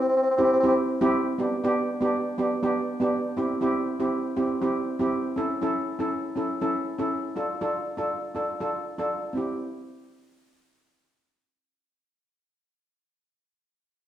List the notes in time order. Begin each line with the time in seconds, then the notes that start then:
Already playing: C4 E4 G4
0.01 C4
0.09 C4
0.16 C4
0.22 C4
0.30 C4
0.36 C4 E4 G4
0.44 C4
0.53 C4
0.60 C4 E4
0.64 C4 G4
1.01 C4 E4 G4
1.38 B3 D4 G4
1.64 B3 D4 G4
2.01 B3 D4 G4
2.38 B3 D4 G4
2.63 B3 D4 G4
3.00 B3 D4 G4
3.37 C4 E4 G4
3.61 C4 E4 G4
4.00 C4 E4 G4
4.36 C4 E4 G4
4.62 C4 E4 G4
4.99 C4 E4 G4
5.36 C#4 E4 A4
5.61 C#4 E4 A4
5.99 C#4 E4 A4
6.36 C#4 E4 A4
6.61 C#4 E4 A4
6.98 C#4 E4 A4
7.36 D4 F4 A4
7.61 D4 F4 A4
7.97 D4 F4 A4
8.35 D4 F4 A4
8.60 D4 F4 A4
8.98 D4 F4 A4
9.33 C4 E4
9.37 G4